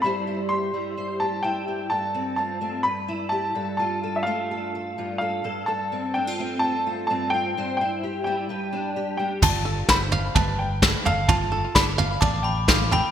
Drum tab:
CC |--------|--------|--------|--------|
SD |--------|--------|--------|--------|
FT |--------|--------|--------|--------|
BD |--------|--------|--------|--------|

CC |--------|x-------|--------|
SD |--------|--o---o-|--o---o-|
FT |--------|o--oo--o|o--oo--o|
BD |--------|o-o-o-o-|o-o-o-o-|